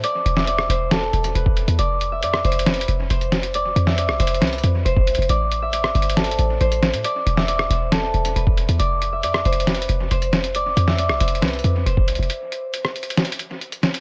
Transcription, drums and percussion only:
0.04 closed hi-hat
0.26 closed hi-hat
0.37 snare
0.47 closed hi-hat
0.58 cross-stick
0.70 closed hi-hat
0.91 snare, closed hi-hat
1.13 closed hi-hat
1.24 closed hi-hat
1.35 closed hi-hat
1.46 kick
1.57 closed hi-hat, open hi-hat
1.68 closed hi-hat
1.79 closed hi-hat
2.01 closed hi-hat
2.23 closed hi-hat
2.34 cross-stick
2.45 closed hi-hat
2.52 closed hi-hat
2.59 closed hi-hat
2.66 snare, closed hi-hat
2.74 closed hi-hat
2.81 closed hi-hat
2.88 closed hi-hat
3.10 closed hi-hat
3.21 closed hi-hat
3.32 snare, closed hi-hat
3.43 closed hi-hat
3.54 closed hi-hat
3.76 closed hi-hat
3.87 snare
3.98 closed hi-hat
4.09 cross-stick
4.20 closed hi-hat
4.27 closed hi-hat
4.34 closed hi-hat
4.42 snare, closed hi-hat
4.47 closed hi-hat
4.53 closed hi-hat
4.58 closed hi-hat
4.63 closed hi-hat
4.86 closed hi-hat
4.97 kick
5.07 closed hi-hat, open hi-hat
5.15 closed hi-hat
5.22 closed hi-hat
5.29 closed hi-hat
5.52 closed hi-hat
5.73 closed hi-hat
5.84 cross-stick
5.95 closed hi-hat
6.02 closed hi-hat
6.10 closed hi-hat
6.17 snare, closed hi-hat
6.24 closed hi-hat
6.31 closed hi-hat
6.39 closed hi-hat
6.61 closed hi-hat
6.72 closed hi-hat
6.83 snare, closed hi-hat
6.94 closed hi-hat
7.04 closed hi-hat
7.27 closed hi-hat
7.37 snare
7.48 closed hi-hat
7.59 cross-stick
7.71 closed hi-hat
7.92 snare, closed hi-hat
8.14 closed hi-hat
8.25 closed hi-hat
8.36 closed hi-hat
8.47 kick
8.57 closed hi-hat, open hi-hat
8.69 closed hi-hat
8.80 closed hi-hat
9.02 closed hi-hat
9.23 closed hi-hat
9.34 cross-stick
9.45 closed hi-hat
9.53 closed hi-hat
9.60 closed hi-hat
9.67 snare, closed hi-hat
9.74 closed hi-hat
9.82 closed hi-hat
9.89 closed hi-hat
10.11 closed hi-hat
10.22 closed hi-hat
10.33 snare, closed hi-hat
10.44 closed hi-hat
10.55 closed hi-hat
10.77 closed hi-hat
10.88 snare
10.98 closed hi-hat
11.09 cross-stick
11.20 closed hi-hat
11.28 closed hi-hat
11.35 closed hi-hat
11.42 snare, closed hi-hat
11.48 closed hi-hat
11.53 closed hi-hat
11.59 closed hi-hat
11.64 closed hi-hat
11.86 closed hi-hat
11.97 kick
12.08 closed hi-hat, open hi-hat
12.15 closed hi-hat
12.23 closed hi-hat
12.30 closed hi-hat
12.52 closed hi-hat
12.74 closed hi-hat
12.85 cross-stick
12.96 closed hi-hat
13.03 closed hi-hat
13.10 closed hi-hat
13.17 snare, closed hi-hat
13.25 closed hi-hat
13.32 closed hi-hat
13.39 closed hi-hat
13.61 closed hi-hat
13.72 closed hi-hat
13.83 snare, closed hi-hat
13.94 closed hi-hat

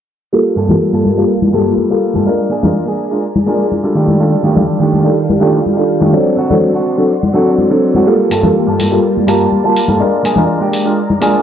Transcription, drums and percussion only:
0.33 tambourine
0.57 tambourine
0.69 tambourine, high conga, low conga
0.82 tambourine
0.93 tambourine
1.05 tambourine, high conga
1.18 tambourine
1.29 tambourine
1.42 tambourine, high conga
1.53 tambourine
1.77 tambourine, high conga
1.91 tambourine
2.02 tambourine
2.14 tambourine, high conga
2.26 tambourine
2.39 tambourine
2.51 tambourine
2.63 tambourine, high conga, low conga
2.75 tambourine
2.87 tambourine
2.99 tambourine
3.12 tambourine
3.23 tambourine
3.35 tambourine, high conga
3.48 tambourine
3.60 tambourine
3.72 tambourine, high conga
3.84 tambourine
3.95 tambourine
4.08 tambourine, high conga
4.20 tambourine
4.33 tambourine
4.44 tambourine
4.57 tambourine, high conga, low conga
4.69 tambourine
4.82 tambourine
4.93 tambourine, high conga
5.05 tambourine
5.17 tambourine
5.30 tambourine, high conga
5.41 tambourine
5.54 tambourine
5.65 tambourine, high conga
5.78 tambourine
5.90 tambourine
6.02 tambourine, high conga
6.13 tambourine
6.26 tambourine
6.38 tambourine
6.50 tambourine, high conga, low conga
6.62 tambourine
6.75 tambourine
6.86 tambourine
6.98 tambourine
7.10 tambourine
7.23 tambourine, high conga
7.35 tambourine
7.46 tambourine
7.58 tambourine, high conga
7.71 tambourine
7.83 tambourine
7.95 tambourine, high conga
8.07 tambourine
8.19 tambourine
8.30 open hi-hat, tambourine
8.43 tambourine, high conga, low conga
8.55 tambourine
8.67 tambourine
8.79 open hi-hat, tambourine, high conga
9.04 tambourine
9.16 tambourine, high conga
9.28 open hi-hat
9.52 tambourine, high conga
9.65 tambourine
9.77 open hi-hat, tambourine
9.88 tambourine, high conga
10.00 tambourine
10.13 tambourine
10.24 open hi-hat, tambourine
10.36 tambourine, high conga, low conga
10.49 tambourine
10.61 tambourine
10.73 open hi-hat, tambourine
10.86 tambourine
10.96 tambourine
11.10 tambourine, high conga
11.21 open hi-hat, tambourine
11.34 tambourine

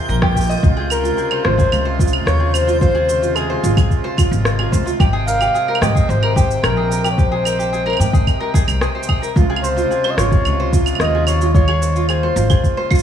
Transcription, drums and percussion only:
0.10 cabasa
0.22 kick, cross-stick
0.36 kick, cabasa
0.41 cabasa
0.44 cabasa
0.47 cabasa
0.50 cabasa
0.54 cabasa
0.57 cabasa
0.60 kick, cabasa
0.64 cabasa
0.90 cabasa, claves
1.05 cabasa
1.18 cabasa
1.31 claves
1.45 cross-stick
1.58 kick, cabasa
1.72 cabasa, claves
1.99 kick, cabasa
2.08 cabasa
2.13 claves
2.27 cross-stick, cabasa
2.54 cabasa, claves
2.69 cabasa
2.81 kick, cabasa
3.09 cabasa
3.23 cabasa
3.36 cabasa, claves
3.64 cabasa
3.77 kick, cabasa, claves
3.91 kick, cabasa
4.18 kick, cabasa, claves
4.33 cabasa
4.45 cross-stick, cabasa
4.59 claves
4.73 kick, cabasa
4.87 cabasa
5.00 kick, cabasa, claves
5.28 cabasa
5.41 cabasa, claves
5.55 cabasa
5.75 claves
5.82 cross-stick, cabasa
5.95 kick, cabasa
6.10 cabasa
6.23 claves
6.36 kick, cabasa
6.51 cabasa
6.64 cross-stick, cabasa, claves
6.92 cabasa
7.04 cabasa, claves
7.18 kick, cabasa
7.45 cabasa, claves
7.60 cabasa
7.74 cabasa
7.87 claves
7.90 claves
7.93 claves
7.97 claves
8.01 cabasa
8.13 kick, cabasa
8.27 kick, cabasa, claves
8.54 kick, cabasa
8.68 cabasa, claves
8.81 cross-stick, cabasa
9.03 cabasa
9.09 kick, claves
9.23 cabasa
9.36 kick, cabasa
9.56 claves
9.64 cabasa
9.78 cabasa
9.92 cabasa
10.04 claves
10.18 cross-stick, cabasa
10.32 kick, cabasa
10.45 cabasa, claves
10.73 kick, cabasa
10.86 cabasa, claves
10.95 claves
11.00 cross-stick, cabasa
11.04 claves
11.27 cabasa, claves
11.41 cabasa
11.54 kick, cabasa
11.68 claves
11.82 cabasa
11.96 cabasa
12.09 cabasa, claves
12.37 cabasa
12.50 kick, cabasa, claves
12.64 kick, cabasa
12.91 kick, cabasa, claves
12.95 cabasa
12.99 cabasa

